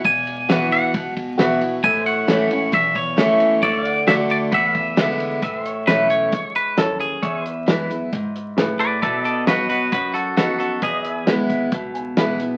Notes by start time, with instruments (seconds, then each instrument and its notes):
Already playing: pedal steel guitar B4
0.04 upright bass E1, steel-string acoustic guitar E2, clean electric guitar G#5, kick, ride
0.27 ride
0.49 steel-string acoustic guitar E3 B3 E4 F#4, upright piano F#4 B4 E5, snare, ride
0.72 clean electric guitar F#5, ride
0.94 upright bass C#2, steel-string acoustic guitar B2, kick, ride
1.17 kick, ride
1.38 upright bass B1, steel-string acoustic guitar E3 B3 E4 F#4, upright piano F#4 B4 E5, snare, ride
1.61 steel-string acoustic guitar E4 F#4, ride
1.84 upright bass A1, steel-string acoustic guitar A2, pedal steel guitar B4 E5, clean electric guitar G#5, kick, ride
2.06 pedal steel guitar C#5, clean electric guitar F#5, ride
2.27 upright bass A1, steel-string acoustic guitar E3 A3 C#4 E4, upright piano E4 A4 C#5, snare, ride
2.50 steel-string acoustic guitar C#4 E4, ride
2.72 upright bass B1, steel-string acoustic guitar E2, clean electric guitar E5, kick, ride
2.95 clean electric guitar C#5, kick, ride
3.16 upright bass C#2, steel-string acoustic guitar E3 A3 C#4 E4, upright piano E4 A4 C#5, snare, ride
3.40 ride
3.62 upright bass D2, steel-string acoustic guitar D3, pedal steel guitar C#5 E5, clean electric guitar D5, kick, ride
3.83 pedal steel guitar D5, ride
3.89 pedal steel guitar F#5
4.07 steel-string acoustic guitar D3 A3 D4 F#4, upright piano F#4 A4 D5, clean electric guitar E5, snare, ride
4.30 clean electric guitar D5, ride
4.52 upright bass E2, pedal steel guitar B4 F#5, clean electric guitar E5, kick, ride
4.75 pedal steel guitar E5, kick, ride
4.96 steel-string acoustic guitar D3 G#3 B3 E4, upright piano G#4 B4 E5, snare, ride
5.20 ride
5.42 upright bass A1, steel-string acoustic guitar A2, pedal steel guitar B4 E5, kick, closed hi-hat
5.65 pedal steel guitar C#5, closed hi-hat
5.87 upright bass B1, steel-string acoustic guitar E3 A3 C#4 E4, upright piano E4 A4 C#5, clean electric guitar B4, snare, closed hi-hat
6.10 clean electric guitar C#5, closed hi-hat
6.32 upright bass C#2, steel-string acoustic guitar G#2, kick, closed hi-hat
6.55 clean electric guitar B4, closed hi-hat
6.77 upright bass D#2, steel-string acoustic guitar F#2, upright piano E4 A4 C#5, clean electric guitar A4, snare, closed hi-hat
7.00 clean electric guitar G#4, closed hi-hat
7.23 upright bass E2, steel-string acoustic guitar E2, pedal steel guitar C#5 E5, kick, closed hi-hat
7.46 pedal steel guitar B4, closed hi-hat
7.66 upright bass F#2, steel-string acoustic guitar E3 G#3 B3 E4, upright piano E4 G#4 B4, snare, closed hi-hat
7.89 steel-string acoustic guitar B3 E4, closed hi-hat
8.13 upright bass G#2, steel-string acoustic guitar G#2, kick, closed hi-hat
8.36 closed hi-hat
8.57 upright bass A2, steel-string acoustic guitar A2, upright piano E4 G#4 B4, snare, closed hi-hat
8.79 clean electric guitar B4 D5, closed hi-hat
9.02 upright bass B2, steel-string acoustic guitar B2, clean electric guitar A4 D5, pedal steel guitar B4 E5, kick, closed hi-hat
9.23 clean electric guitar A4 D5, pedal steel guitar D#5, closed hi-hat
9.47 upright bass G2, steel-string acoustic guitar F#3 B3 D#4 F#4, upright piano D#4 F#4 B4, clean electric guitar F#4 B4, snare, closed hi-hat
9.69 clean electric guitar F#4 B4, muted upright bass stroke, closed hi-hat
9.92 upright bass F#2, steel-string acoustic guitar F#2, clean electric guitar F#4 B4, kick, closed hi-hat
10.14 clean electric guitar F#4 A4, closed hi-hat
10.36 upright bass F2, steel-string acoustic guitar B3 D#4 F#4, upright piano D#4 F#4 B4, clean electric guitar F#4 A4, snare, closed hi-hat
10.59 clean electric guitar F#4 A4, closed hi-hat
10.82 upright bass E2, steel-string acoustic guitar E2, clean electric guitar G#4, pedal steel guitar B4 D#5, kick, closed hi-hat
11.03 pedal steel guitar E5, closed hi-hat
11.26 upright bass D#2, steel-string acoustic guitar G#3 B3 E4, upright piano E4 G#4 B4, snare, closed hi-hat
11.50 kick, closed hi-hat
11.72 upright bass C#2, steel-string acoustic guitar B2, kick, closed hi-hat
11.94 upright piano G#5, closed hi-hat
12.17 upright bass B1, steel-string acoustic guitar E3 G#3 B3 E4, upright piano E4 G#4 B4 E5, snare, closed hi-hat
12.39 steel-string acoustic guitar B3 E4, closed hi-hat